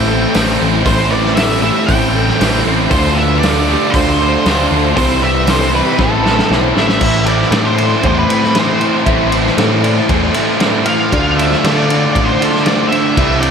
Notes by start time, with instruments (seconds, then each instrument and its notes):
Already playing: picked electric bass A1, distorted electric guitar A2 E3 A3 C4 E4, overdriven electric guitar A2 E3 A3 C4, clean electric guitar G4 C5, lead electric guitar G5
0.07 distorted electric guitar E3 A3, overdriven electric guitar E4, clean electric guitar A4
0.11 overdriven electric guitar A3 C4
0.33 picked electric bass A1, distorted electric guitar A2, overdriven electric guitar E3 A3, clean electric guitar C5, snare, open hi-hat
0.38 overdriven electric guitar C4 E4
0.59 picked electric bass A1, distorted electric guitar E3 A3, overdriven electric guitar C4 E4, clean electric guitar C5
0.64 overdriven electric guitar A3
0.83 picked electric bass A1, distorted electric guitar A2 E3, clean electric guitar C5, lead electric guitar C5, kick, open hi-hat
0.88 overdriven electric guitar A2 E3 A3 C4 E4
1.10 distorted electric guitar E3 A3, clean electric guitar B4, lead electric guitar D5
1.14 overdriven electric guitar A3 C4 E4
1.26 snare
1.35 distorted electric guitar A2, overdriven electric guitar E3 A3, clean electric guitar A4, lead electric guitar E5, snare, open hi-hat
1.39 overdriven electric guitar C4 E4
1.62 distorted electric guitar A2 E3, overdriven electric guitar A3 C4 E4, clean electric guitar G4, lead electric guitar E5
1.86 picked electric bass A1, overdriven electric guitar A2 E3 A3 C4, clean electric guitar C5, lead electric guitar G5, kick, open hi-hat
1.91 overdriven electric guitar E4
2.15 distorted electric guitar E3, overdriven electric guitar A3 C4 E4, clean electric guitar A4
2.29 snare
2.38 picked electric bass A1, distorted electric guitar A2, overdriven electric guitar E3 A3, clean electric guitar C5, snare, open hi-hat
2.43 overdriven electric guitar C4 E4
2.65 picked electric bass A1, distorted electric guitar E3, overdriven electric guitar A3 C4 E4, clean electric guitar C5
2.91 picked electric bass D2, overdriven electric guitar D3 A3 D4 F4, lead electric guitar C5, clean electric guitar C5, kick, open hi-hat
3.15 overdriven electric guitar D4 F4, lead electric guitar E5
3.19 overdriven electric guitar A3, clean electric guitar B4
3.39 overdriven electric guitar D3 A3, lead electric guitar D5, open hi-hat
3.44 overdriven electric guitar D4 F4, clean electric guitar A4, snare
3.68 distorted electric guitar D3, overdriven electric guitar A3 D4 F4, clean electric guitar G4
3.90 picked electric bass D2, overdriven electric guitar D3, lead electric guitar C5, kick, open hi-hat
3.95 overdriven electric guitar A3 D4 F4, clean electric guitar C5
4.20 overdriven electric guitar A3 D4 F4, clean electric guitar A4
4.45 picked electric bass D2, overdriven electric guitar D3 A3 D4 F4, clean electric guitar C5, snare, open hi-hat
4.71 picked electric bass D2, overdriven electric guitar A3 D4 F4, clean electric guitar C5
4.96 picked electric bass C2, overdriven electric guitar C3 E3 G3 C4 E4, clean electric guitar C5, lead electric guitar C5, kick, open hi-hat
5.20 distorted electric guitar C4, overdriven electric guitar E4, clean electric guitar B4, lead electric guitar E5
5.25 overdriven electric guitar G3 C4
5.45 distorted electric guitar C3, overdriven electric guitar E3 G3, clean electric guitar A4, snare, open hi-hat
5.50 overdriven electric guitar C4 E4, lead electric guitar C5
5.73 distorted electric guitar C3 E3, overdriven electric guitar G3 C4 E4, clean electric guitar G4, lead electric guitar B4
5.99 picked electric bass A1, overdriven electric guitar A2 E3 A3 C4 E4, clean electric guitar C5, kick, snare
6.03 lead electric guitar A4
6.24 distorted electric guitar E3, overdriven electric guitar A3 C4 E4, clean electric guitar A4, snare
6.39 snare
6.50 picked electric bass B1, distorted electric guitar A2, overdriven electric guitar E3 A3 C4 E4, clean electric guitar C5, snare
6.75 picked electric bass A1, distorted electric guitar A2 E3, overdriven electric guitar A3 C4 E4, clean electric guitar C5, lead electric guitar E5, snare
6.89 snare
6.99 picked electric bass A1, overdriven electric guitar A2 E3 A3 C4 E4, clean electric guitar E5, kick, crash
7.25 overdriven electric guitar A3 C4 E4, clean electric guitar C5, lead electric guitar D5, ride
7.42 snare
7.51 picked electric bass A2, distorted electric guitar A2, overdriven electric guitar E3 A3 C4 E4, clean electric guitar A4, snare, ride
7.66 lead electric guitar C5
7.78 distorted electric guitar E3 A3, clean electric guitar D5, ride
8.03 picked electric bass E2, distorted electric guitar A2 E3 A3, clean electric guitar C5, lead electric guitar C5, kick, ride
8.19 lead electric guitar B4
8.29 distorted electric guitar E3, overdriven electric guitar A3 C4 E4, clean electric guitar A4, ride
8.44 snare
8.55 overdriven electric guitar A2 E3 A3 C4 E4, clean electric guitar C5, snare, ride
8.60 lead electric guitar C5
8.81 distorted electric guitar E3, overdriven electric guitar A3 C4 E4, clean electric guitar C5, ride
9.05 picked electric bass A1, overdriven electric guitar A2 E3 A3 C4 E4, clean electric guitar E5, kick, ride
9.31 overdriven electric guitar A3 C4 E4, clean electric guitar C5, ride
9.46 snare
9.57 picked electric bass A2, distorted electric guitar A2, overdriven electric guitar E3 A3 C4 E4, clean electric guitar A4, snare, ride
9.83 distorted electric guitar E3 A3, clean electric guitar D5, ride
10.09 picked electric bass E2, distorted electric guitar A2 E3 A3, clean electric guitar C5, kick, ride
10.34 distorted electric guitar E3, overdriven electric guitar A3 C4 E4, clean electric guitar A4, ride
10.60 overdriven electric guitar A2 E3 A3 C4 E4, clean electric guitar C5, snare, ride
10.86 distorted electric guitar E3, overdriven electric guitar A3 C4 E4, clean electric guitar C5, lead electric guitar F5, ride
11.12 picked electric bass D2, overdriven electric guitar D3 A3 D4 F4, clean electric guitar D5, kick, ride
11.37 overdriven electric guitar A3 D4 F4, clean electric guitar C5, lead electric guitar E5, ride
11.52 snare
11.63 overdriven electric guitar D3 A3 D4 F4, picked electric bass D3, clean electric guitar A4, snare, ride
11.75 lead electric guitar D5
11.89 distorted electric guitar A3 D4, clean electric guitar D5, ride
12.12 picked electric bass A1, clean electric guitar C5, lead electric guitar D5, kick, ride
12.17 distorted electric guitar D3 A3 D4
12.25 lead electric guitar C5
12.41 overdriven electric guitar A3 D4 F4, clean electric guitar A4, ride
12.56 snare
12.63 overdriven electric guitar D3 A3, clean electric guitar C5, lead electric guitar D5, snare, ride
12.68 overdriven electric guitar D4 F4
12.89 overdriven electric guitar D4 F4, clean electric guitar C5, lead electric guitar E5, ride
12.93 overdriven electric guitar A3
13.16 picked electric bass C2, overdriven electric guitar C3 E3 G3 C4 E4, clean electric guitar E5, kick, ride
13.41 overdriven electric guitar G3 C4 E4, clean electric guitar C5, lead electric guitar D5, ride